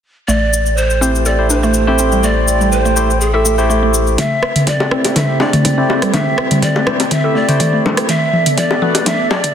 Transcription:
0.28 sub bass A1, synth pluck A3, analog synth pad A4 G5 C6, pan flute D5, cabasa
0.53 cabasa
0.66 cabasa
0.77 pan flute C5, cabasa
0.90 cabasa
1.01 tine electric piano A3 E4 G4 C5, synth pluck C4, cabasa
1.15 cabasa
1.25 synth pluck A4, pan flute D5, cabasa
1.39 tine electric piano A3 E4 G4 C5
1.50 synth pluck D4, pan flute C5, cabasa
1.63 synth pluck A3, cabasa
1.74 cabasa
1.87 tine electric piano A3 E4 G4 C5, synth pluck C4
1.99 synth pluck C4, cabasa
2.12 synth pluck G3, cabasa
2.23 synth pluck A3, pan flute D5, cabasa
2.48 cabasa
2.61 synth pluck G3, cabasa
2.72 pan flute C5, cabasa
2.85 synth pluck A3, cabasa
2.96 tine electric piano A3 E4 G4 C5, cabasa
3.10 cabasa
3.20 pan flute G#4, cabasa
3.33 tine electric piano A3 E4 G4 E5, pan flute A4, synth pluck A4
3.45 synth pluck A3, cabasa
3.58 tine electric piano A3 E4 G4 C5, cabasa
3.70 synth pluck A3, cabasa
3.83 synth pluck A3
3.94 cabasa
4.07 cabasa
4.18 synth pluck A3, analog synth pad C4 A4 G5, pan flute E5, kick, closed hi-hat, mid tom
4.43 cross-stick
4.56 closed hi-hat, mid tom
4.67 pan flute D5, kick, closed hi-hat, mid tom
4.80 high bongo
4.91 tine electric piano A3 E4 G4 C5, synth pluck C4, cross-stick
5.05 closed hi-hat, high bongo
5.16 synth pluck A4, pan flute E5, kick, closed hi-hat, mid tom, low bongo
5.29 tine electric piano A3 E4 G4 C5
5.40 synth pluck D4, pan flute D5, high bongo
5.53 synth pluck A3, kick, closed hi-hat, mid tom
5.65 kick, closed hi-hat, mid tom, low bongo
5.77 tine electric piano A3 E4 G4 C5, synth pluck C4
5.89 synth pluck C4, high bongo
6.02 synth pluck G3, cross-stick, closed hi-hat
6.13 synth pluck A3, pan flute E5, kick, closed hi-hat, mid tom, low bongo
6.38 cross-stick
6.51 synth pluck G3, closed hi-hat, mid tom
6.62 pan flute D5, kick, closed hi-hat, mid tom
6.75 synth pluck A3, high bongo
6.87 tine electric piano A3 E4 G4 C5, cross-stick, low bongo
7.00 closed hi-hat, high bongo
7.11 pan flute E5, kick, closed hi-hat, mid tom
7.24 tine electric piano A3 E4 G4 E5, synth pluck A4
7.35 synth pluck A3, pan flute D5
7.48 tine electric piano A3 E4 G4 C5, closed hi-hat, mid tom
7.60 synth pluck A3, kick, closed hi-hat, mid tom
7.73 synth pluck A3
7.86 low bongo
7.97 cross-stick, closed hi-hat
8.09 synth pluck A3, analog synth pad B3 A4 D5, pan flute E5, kick, closed hi-hat, mid tom
8.33 mid tom
8.46 closed hi-hat, mid tom
8.58 pan flute D5, kick, closed hi-hat, mid tom
8.71 high bongo
8.82 tine electric piano A3 D4 F#4 B4, synth pluck B3, mid tom
8.95 closed hi-hat, high bongo
9.06 synth pluck A3, pan flute E5, kick, closed hi-hat, mid tom, low bongo
9.31 pan flute D5, mid tom, high bongo
9.44 kick, closed hi-hat, mid tom

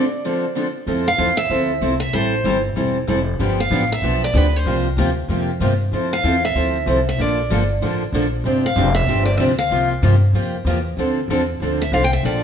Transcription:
Already playing: steel-string acoustic guitar D5
0.25 steel-string acoustic guitar D3 F3 C4 D4 A4
0.56 steel-string acoustic guitar D3 F3 C4 D4 A4
0.87 upright bass F2, steel-string acoustic guitar F3 C4 E4 A4
1.08 steel-string acoustic guitar F5
1.18 upright bass E2, steel-string acoustic guitar F3 C4 E4 A4
1.37 steel-string acoustic guitar E5
1.50 upright bass D2, steel-string acoustic guitar F3 C4 E4 A4
1.81 upright bass C2, steel-string acoustic guitar F3 C4 E4 A4
2.00 steel-string acoustic guitar E5
2.13 upright bass A1, steel-string acoustic guitar E3 G3 C4 E4 A4 C5
2.44 upright bass G1, steel-string acoustic guitar E3 G3 C4 E4 A4
2.76 upright bass E1, steel-string acoustic guitar E3 G3 C4 E4 A4
3.07 upright bass F1, steel-string acoustic guitar E3 G3 C4 E4 A4
3.39 upright bass G1, steel-string acoustic guitar D3 F3 B3 D4 G4
3.60 steel-string acoustic guitar F5
3.71 upright bass A1, steel-string acoustic guitar D3 F3 B3 D4 G4
3.92 steel-string acoustic guitar E5
4.02 upright bass B1, steel-string acoustic guitar D3 F3 B3 D4 G4
4.24 steel-string acoustic guitar D5
4.34 upright bass D2, steel-string acoustic guitar D3 F3 B3 D4 G4 B4
4.56 steel-string acoustic guitar C5
4.65 upright bass C2, steel-string acoustic guitar C3 F3 A#3 F4 G4
4.97 upright bass D2, steel-string acoustic guitar C3 F3 A#3 F4 G4
5.28 upright bass F2, steel-string acoustic guitar C3 F3 A#3 F4 G4
5.60 upright bass G2, steel-string acoustic guitar C3 F3 A#3 F4 G4
5.92 upright bass F2, steel-string acoustic guitar F3 C4 E4 A4
6.13 steel-string acoustic guitar F5
6.24 upright bass E2, steel-string acoustic guitar F3 C4 E4 A4
6.45 steel-string acoustic guitar E5
6.55 upright bass D2, steel-string acoustic guitar F3 C4 E4 A4
6.86 upright bass C2, steel-string acoustic guitar F3 C4 E4 A4
7.09 steel-string acoustic guitar E5
7.18 upright bass A#1, steel-string acoustic guitar D3 F3 A#3 D4 A4 D5
7.50 upright bass G1, steel-string acoustic guitar D3 F3 A#3 D4 A4
7.82 upright bass A1, steel-string acoustic guitar D3 F3 A#3 D4 A4
8.12 upright bass A#1, steel-string acoustic guitar D3 F3 A#3 D4 A4
8.44 upright bass G1, steel-string acoustic guitar C3 F3 C4 D4 G4
8.66 steel-string acoustic guitar F5
8.76 upright bass F1, steel-string acoustic guitar C3 F3 C4 D4 G4
8.95 steel-string acoustic guitar E5
9.07 upright bass G1, steel-string acoustic guitar C3 F3 C4 D4 G4
9.25 steel-string acoustic guitar D5
9.37 upright bass D2, steel-string acoustic guitar C3 F3 C4 D4 G4 E5
9.59 steel-string acoustic guitar F5
9.70 upright bass C2, steel-string acoustic guitar C3 F3 A#3 F4 G4
10.02 upright bass G2, steel-string acoustic guitar C3 F3 A#3 F4 G4
10.33 upright bass F2, steel-string acoustic guitar C3 F3 A#3 F4 G4
10.65 upright bass E2, steel-string acoustic guitar C3 F3 A#3 F4 G4
10.97 upright bass D2, steel-string acoustic guitar D3 F3 C4 D4 A4
11.28 upright bass E2, steel-string acoustic guitar D3 F3 C4 D4 A4
11.60 upright bass D2, steel-string acoustic guitar D3 F3 C4 D4 A4
11.82 steel-string acoustic guitar E5
11.92 upright bass C2, steel-string acoustic guitar D3 F3 C4 D4 A4 F5
12.04 steel-string acoustic guitar G5
12.13 steel-string acoustic guitar E5
12.23 upright bass A#1, steel-string acoustic guitar D3 F3 A#3 D4 A4 D5

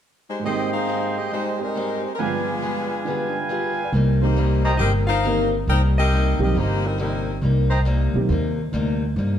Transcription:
0.29 saxophone section G#3 D#4 G4 C5
0.39 grand piano G#2 D#3
0.44 steel-string acoustic guitar G#2 G3 C4 D#4, grand piano G#3 A#3, saxophone section C4 G4 G#4 D#5, trumpet section C5 D#5 G5 C6
0.51 grand piano C4
0.73 saxophone section D#4 G#4 C5 F5
0.87 steel-string acoustic guitar G#2 G3 C4 D#4
1.17 saxophone section C4 G4 G#4 D#5
1.31 steel-string acoustic guitar G#2 G3 C4 D#4, saxophone section G#3 D#4 G4 C5
1.59 saxophone section G#3 D#4 G4 A#4, grand piano C4 G4 D5
1.75 steel-string acoustic guitar G#2 G3 C4 D#4
2.04 saxophone section G#3 D#4 G4 C5
2.14 saxophone section A#4, trumpet section B4 F5
2.18 grand piano G2 D3 F3 G#3 B3, steel-string acoustic guitar G3 B3 F4 G#4, saxophone section G#3 D4 F4 B4, trumpet section G5 G#5
2.62 steel-string acoustic guitar G3 B3 F4 G#4
3.05 grand piano D3 G4, steel-string acoustic guitar G3 B3 F4
3.09 steel-string acoustic guitar G#4
3.29 grand piano D4
3.40 grand piano F4
3.49 steel-string acoustic guitar G3 B3 F4 G#4, grand piano G4
3.60 grand piano G#4
3.73 grand piano B4
3.83 grand piano D5
3.93 upright bass C2, steel-string acoustic guitar C3 G3 A#3 D#4
4.22 grand piano D#3 G3 A#3 C4 G4, saxophone section A#3 D#4 G4 C5
4.36 steel-string acoustic guitar C3 G3 A#3 D#4
4.64 saxophone section A#3 D#4 G4 D5, trumpet section C5 D#5 G5 A#5
4.78 upright bass G1, steel-string acoustic guitar C3 G3, saxophone section C4 G4 A#4 D#5
4.82 steel-string acoustic guitar A#3 D#4
5.07 saxophone section D#4 A#4 C5 F5
5.24 steel-string acoustic guitar C3 G3 A#3 D#4, grand piano D#3 G3 A#3 C4 A#4
5.67 upright bass C2, steel-string acoustic guitar C3 G3 A#3 D#4, saxophone section D#4 A#4 C5 G5
5.98 saxophone section C4 G4 A#4 D#5
6.11 steel-string acoustic guitar C3 G3 A#3 D#4
6.39 upright bass B1, grand piano D#3 G3 A#3 C4 G4, saxophone section C4 G4 A#4 D#5
6.55 upright bass G1, steel-string acoustic guitar C3 G3 A#3 D#4, saxophone section A#3 D#4 G4 C5
6.86 saxophone section G3 C4 D#4 A#4
6.98 steel-string acoustic guitar C3 G3 A#3 D#4, saxophone section G3 C4 D#4 A#4
7.41 upright bass C2, steel-string acoustic guitar C3 G3 A#3 D#4
7.70 trumpet section C5 D#5 G5 A#5
7.85 steel-string acoustic guitar C3 G3 A#3 D#4
8.14 upright bass B1, grand piano D#3 G3 A#3 C4 G4
8.29 upright bass D#2, steel-string acoustic guitar C3 G3 A#3 D#4
8.72 upright bass D2, steel-string acoustic guitar C3 G3 A#3 D#4
9.16 upright bass G2, steel-string acoustic guitar C3 G3 A#3 D#4

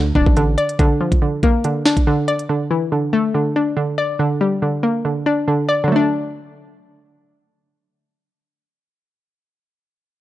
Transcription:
Already playing: 808-style bass D2, synth pluck D3 E3 A3
0.15 808-style bass D1, synth pluck D4, kick
0.26 808-style bass A1, kick
0.36 synth pluck D3, closed hi-hat
0.58 synth pluck D5, closed hi-hat
0.69 closed hi-hat
0.79 synth pluck D3, kick, closed hi-hat
1.01 synth pluck F3
1.12 kick, closed hi-hat
1.22 synth pluck D3
1.43 synth pluck A#3, kick, closed hi-hat
1.64 synth pluck D3, closed hi-hat
1.85 synth pluck D4, snare
1.97 kick, closed hi-hat
2.07 synth pluck D3
2.28 synth pluck D5, closed hi-hat
2.39 closed hi-hat
2.49 synth pluck D3
2.71 synth pluck E3
2.92 synth pluck D3
3.13 synth pluck A3
3.34 synth pluck D3
3.56 synth pluck D4
3.77 synth pluck D3
3.98 synth pluck D5
4.19 synth pluck D3
4.41 synth pluck G3
4.62 synth pluck D3
4.83 synth pluck A#3
5.05 synth pluck D3
5.26 synth pluck D4
5.48 synth pluck D3
5.69 synth pluck D5
5.84 synth pluck D3
5.88 synth pluck F#3
5.92 synth pluck A3 D4

